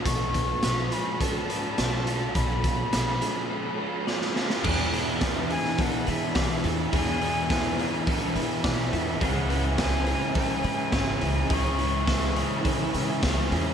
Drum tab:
CC |----------------|----------------|x---------------|----------------|
HH |x-x-x-x-x-x-x-x-|x-x-x-x---------|--o-o-o-o-o-o-o-|o-o-o-o-o-o-o-o-|
SD |----o-------o---|----o-------oooo|----o--o----o---|----o-------o---|
BD |o-o-----o-------|o-o-------------|o---o---o---o---|o---o---o---o---|

CC |----------------|----------------|
HH |o-o-o-o-o-o-o-o-|o-o-o-o-o-o-o-o-|
SD |----o-------o---|----o-------o---|
BD |o---o---o---o---|o---o---o---o---|